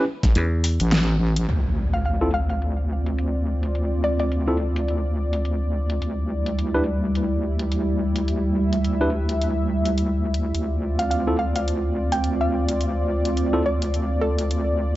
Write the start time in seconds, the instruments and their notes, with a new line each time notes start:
0.23 wobble bass A1, kick, snare, closed hi-hat
0.35 slap bass E2, closed hi-hat
0.64 open hi-hat
0.80 wobble bass A1, closed hi-hat
0.92 snare, closed hi-hat
1.36 closed hi-hat
1.48 wobble bass D2, analog synth pad C4 F4 D5, closed hi-hat, crash, impact
1.93 synth pluck F5, closed hi-hat
2.05 synth pluck F5, closed hi-hat
2.21 tine electric piano C4 E4 F4 A4
2.34 synth pluck F5
2.49 synth pluck F5, closed hi-hat
2.62 closed hi-hat
3.06 closed hi-hat
3.19 closed hi-hat
3.63 closed hi-hat
3.75 closed hi-hat
4.04 synth pluck D5
4.19 synth pluck D5, closed hi-hat
4.32 closed hi-hat
4.48 tine electric piano C4 E4 F4 A4
4.76 closed hi-hat
4.88 closed hi-hat
5.33 closed hi-hat
5.45 closed hi-hat
5.90 closed hi-hat
6.01 wobble bass D2, analog synth pad G3 E4, closed hi-hat
6.46 closed hi-hat
6.59 closed hi-hat
6.74 tine electric piano D4 E4 G4 B4
7.15 closed hi-hat
7.59 closed hi-hat
7.72 closed hi-hat
8.16 closed hi-hat
8.28 analog synth pad E5, closed hi-hat
8.73 closed hi-hat
8.84 closed hi-hat
9.01 tine electric piano D4 E4 G4 B4
9.29 closed hi-hat
9.41 closed hi-hat
9.85 closed hi-hat
9.98 closed hi-hat
10.34 closed hi-hat
10.54 wobble bass D2, analog synth pad C4 F4 D5, closed hi-hat
10.99 synth pluck F5, closed hi-hat
11.11 synth pluck F5, closed hi-hat
11.27 tine electric piano C4 E4 F4 A4
11.39 synth pluck F5
11.56 synth pluck F5, closed hi-hat
11.68 closed hi-hat
12.12 synth pluck G5, closed hi-hat
12.24 closed hi-hat
12.41 synth pluck F5
12.69 closed hi-hat
12.81 closed hi-hat
13.25 closed hi-hat
13.37 closed hi-hat
13.53 tine electric piano C4 E4 F4 A4
13.66 synth pluck D5
13.82 closed hi-hat
13.94 closed hi-hat
14.21 synth pluck A4
14.39 closed hi-hat
14.51 closed hi-hat